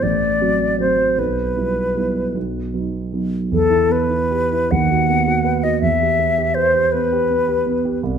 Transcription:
0.03 0.40 A1 soft
0.03 0.80 D5 medium
0.41 0.75 F#3 soft
0.41 0.75 C4 soft
0.41 0.76 F#4 soft
0.80 1.15 F#3 soft
0.80 1.15 C4 soft
0.80 1.15 F#4 soft
0.80 1.20 C5 soft
1.17 1.56 B1 soft
1.17 2.36 B4 soft
1.56 1.92 G3 soft
1.56 1.92 B3 soft
1.56 1.92 E4 soft
1.95 2.31 G3 soft
1.95 2.31 B3 soft
1.95 2.32 E4 soft
2.35 2.73 B1 soft
2.74 3.10 F#3 soft
2.74 3.09 B3 soft
2.74 3.10 D#4 soft
3.13 3.48 F#3 soft
3.13 3.48 B3 soft
3.13 3.48 D#4 soft
3.52 4.67 E2 soft
3.52 3.93 A4 medium
3.70 4.02 E4 soft
3.89 4.23 B3 soft
3.89 4.73 B4 medium
4.09 4.43 E4 soft
4.31 4.63 G4 soft
4.52 4.71 E4 soft
4.71 5.78 D#2 soft
4.71 5.65 F#5 medium
4.91 5.20 F#4 soft
5.10 5.38 B3 soft
5.27 5.56 F#4 soft
5.44 5.74 B4 soft
5.64 5.82 F#4 soft
5.64 5.81 D#5 medium
5.81 7.97 E2 soft
5.81 6.56 E5 medium
6.02 6.30 G4 soft
6.19 6.48 B3 soft
6.38 6.66 G4 soft
6.55 6.85 B4 soft
6.55 6.93 C5 medium
6.74 7.03 G4 soft
6.92 7.22 B3 soft
6.92 8.01 B4 medium
7.12 7.40 G4 soft
7.30 7.58 B3 soft
7.48 7.76 G4 soft
7.66 7.94 B3 soft
7.85 8.02 G4 soft
8.03 8.19 C2 soft

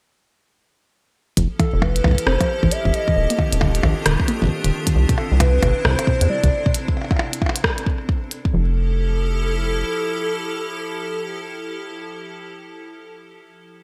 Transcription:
1.37 1.48 F1 loud
1.37 3.14 F3 medium
1.37 1.50 F3 medium
1.37 8.55 C4 medium
1.37 3.14 E4 medium
1.37 4.92 G4 medium
1.37 3.14 A4 medium
1.37 8.55 A4 medium
1.37 kick loud
1.37 closed hi-hat medium
1.59 1.65 E3 loud
1.59 1.83 A4 medium
1.59 kick loud
1.59 closed hi-hat soft
1.59 percussion blips soft
1.73 2.01 F1 medium
1.82 1.95 F3 medium
1.82 2.26 B4 medium
1.82 kick loud
1.82 percussion blips medium
1.96 closed hi-hat medium
2.04 2.15 C2 loud
2.04 2.14 E3 loud
2.04 kick loud
2.04 percussion blips medium
2.08 kick medium
2.11 kick medium
2.15 kick medium
2.15 closed hi-hat medium
2.27 2.37 F1 medium
2.27 2.32 C4 loud
2.27 2.73 C5 loud
2.27 cross-stick loud
2.41 2.49 F3 medium
2.41 kick medium
2.41 closed hi-hat medium
2.41 percussion blips soft
2.63 2.70 A1 loud
2.63 2.66 E3 loud
2.63 kick loud
2.71 2.95 E5 loud
2.71 closed hi-hat medium
2.85 2.92 F1 medium
2.85 2.93 F3 medium
2.85 kick loud
2.94 3.39 D#5 loud
2.94 closed hi-hat medium
3.08 3.14 E3 loud
3.08 kick loud
3.16 3.27 D#1 medium
3.16 4.94 D#3 medium
3.16 4.94 D4 medium
3.16 4.94 F4 medium
3.30 3.34 A#3 loud
3.30 closed hi-hat medium
3.39 3.52 D#3 medium
3.39 kick loud
3.39 percussion blips soft
3.52 3.80 D#1 medium
3.52 closed hi-hat medium
3.61 3.67 D3 loud
3.61 kick loud
3.61 percussion blips medium
3.75 closed hi-hat medium
3.83 3.94 A#1 loud
3.83 3.97 D#3 medium
3.83 kick loud
3.83 percussion blips medium
4.06 4.17 D#1 medium
4.06 4.15 D3 loud
4.06 cross-stick loud
4.06 closed hi-hat loud
4.20 kick loud
4.28 4.34 A#3 loud
4.28 closed hi-hat medium
4.42 4.49 G1 loud
4.42 4.50 D#3 medium
4.42 kick loud
4.44 kick medium
4.45 kick medium
4.47 kick medium
4.49 kick soft
4.64 4.71 D#1 medium
4.64 4.68 D3 loud
4.64 closed hi-hat medium
4.87 4.95 D#3 medium
4.87 kick loud
4.87 closed hi-hat medium
4.95 5.06 C2 loud
4.95 6.73 C3 medium
4.95 6.73 C4 medium
4.95 6.73 D4 medium
4.95 6.73 E4 medium
5.09 5.15 B2 loud
5.09 kick loud
5.09 closed hi-hat medium
5.18 5.28 A4 medium
5.18 percussion blips soft
5.32 5.59 C2 medium
5.32 5.35 G3 loud
5.40 5.53 C3 medium
5.40 5.86 B4 medium
5.40 kick loud
5.40 closed hi-hat medium
5.40 percussion blips medium
5.62 5.73 G1 loud
5.62 5.68 B2 loud
5.62 kick loud
5.62 closed hi-hat medium
5.62 percussion blips medium
5.85 5.96 C2 medium
5.85 5.98 C3 medium
5.85 6.29 C5 loud
5.85 kick loud
5.85 cross-stick loud
5.99 closed hi-hat medium
5.99 percussion blips soft
6.07 6.17 B2 loud
6.07 kick loud
6.21 6.28 E2 loud
6.21 closed hi-hat medium
6.30 6.35 G3 loud
6.30 6.71 D5 loud
6.44 6.50 C2 medium
6.44 6.52 C3 medium
6.44 kick loud
6.44 closed hi-hat medium
6.66 6.69 B2 loud
6.66 kick loud
6.74 closed hi-hat medium
6.88 kick loud
6.97 percussion blips soft
7.02 percussion blips soft
7.04 percussion blips soft
7.11 kick loud
7.11 percussion blips soft
7.17 percussion blips soft
7.19 percussion blips medium
7.33 closed hi-hat medium
7.42 kick loud
7.42 percussion blips soft
7.46 percussion blips soft
7.49 percussion blips medium
7.56 closed hi-hat medium
7.64 kick loud
7.64 cross-stick loud
7.78 closed hi-hat soft
7.86 kick loud
8.09 kick loud
8.31 closed hi-hat soft
8.45 kick loud
8.53 9.84 F1 loud
8.53 12.04 F3 medium
8.53 8.74 F3 medium
8.53 12.04 E4 medium
8.53 12.04 G4 medium
8.53 12.04 A4 medium
8.53 12.04 A4 loud

